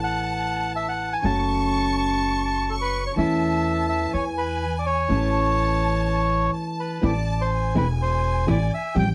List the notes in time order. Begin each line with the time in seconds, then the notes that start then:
Already playing: A1 E3 A3 C#4 E4 A5
0.04 F#5
0.76 E5
0.89 F#5
1.13 G#5
1.22 F#1 C#3 F#3 A3 C#4 F#4 A5 C#6
1.97 A5
2.45 A5
2.69 A4 C#6
2.82 B4
3.07 C#5
3.16 E2 E3 A3 C#4 E4 E5 A5
3.89 E5
4.13 E2 C#5 G#5
4.38 B4
4.79 D5
4.86 C#5
5.09 A1 E3 A3 C#4 E4 A5
6.54 A5
6.80 B4
7.02 A1 E3 A3 C4 E4 D5 A5
7.41 C5
7.52 G#5
7.75 E1 E3 A3 C4 E4 B4
8.02 C5
8.46 A1 E3 A3 C4 E4
8.51 D5
8.74 E5
8.95 A1 F3 G3 C4 G4 G5
8.99 G5